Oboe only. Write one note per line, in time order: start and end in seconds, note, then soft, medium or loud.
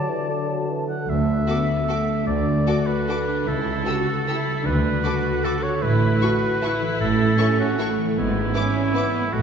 0.00 0.65 D5 soft
0.88 1.11 F#5 soft
1.09 2.26 E5 medium
2.27 2.88 D5 medium
2.87 3.49 B4 medium
3.48 4.67 A4 medium
4.65 5.46 B4 medium
5.44 5.64 A4 medium
5.63 5.84 C#5 medium
5.82 7.00 B4 medium
7.01 7.58 A4 medium
7.59 7.97 F#4 medium
8.18 9.34 E4 medium
9.33 9.42 F#4 medium